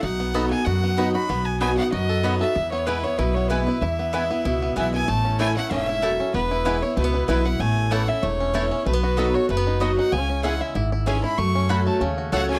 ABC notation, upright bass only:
X:1
M:4/4
L:1/8
Q:"Swing" 1/4=190
K:E
V:1 name="Upright bass" clef=bass
B,,,4 F,,4 | B,,,4 F,,4 | E,,4 B,,,4 | E,,4 C,,2 B,,,2 |
A,,,4 E,,,4 | E,,,4 C,,2 B,,,2 | A,,,4 E,,,4 | B,,,4 F,,,4 |
C,,4 G,,,4 | F,,4 D,,2 C,,2 |]